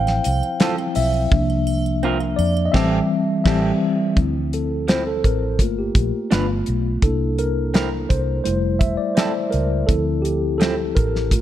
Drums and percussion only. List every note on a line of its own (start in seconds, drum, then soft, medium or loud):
0.07 snare soft
0.07 muted triangle soft
0.24 closed hi-hat medium
0.24 triangle medium
0.43 muted triangle soft
0.60 snare loud
0.60 closed hi-hat medium
0.60 muted triangle soft
0.78 muted triangle soft
0.95 open hi-hat medium
0.95 triangle medium
1.14 muted triangle soft
1.32 kick loud
1.32 muted triangle soft
1.50 muted triangle soft
1.67 triangle medium
1.86 muted triangle medium
2.03 muted triangle soft
2.20 muted triangle soft
2.39 triangle medium
2.57 muted triangle soft
2.74 kick loud
2.74 snare loud
2.74 crash medium
3.45 kick loud
3.45 snare loud
3.45 crash medium
4.17 kick medium
4.17 closed hi-hat medium
4.53 closed hi-hat medium
4.88 snare loud
4.88 closed hi-hat medium
5.24 kick medium
5.24 closed hi-hat medium
5.59 kick medium
5.59 closed hi-hat medium
5.95 kick loud
5.95 closed hi-hat medium
6.31 snare loud
6.31 closed hi-hat medium
6.66 closed hi-hat medium
7.02 kick loud
7.02 closed hi-hat medium
7.38 closed hi-hat medium
7.74 snare loud
7.74 closed hi-hat medium
8.10 kick medium
8.10 closed hi-hat medium
8.45 closed hi-hat medium
8.81 kick loud
8.81 closed hi-hat medium
9.17 snare loud
9.17 closed hi-hat medium
9.52 closed hi-hat medium
9.89 kick loud
9.89 closed hi-hat medium
10.25 closed hi-hat medium
10.61 snare loud
10.61 closed hi-hat medium
10.97 kick medium
10.97 closed hi-hat medium
11.16 snare soft
11.31 kick medium
11.31 closed hi-hat medium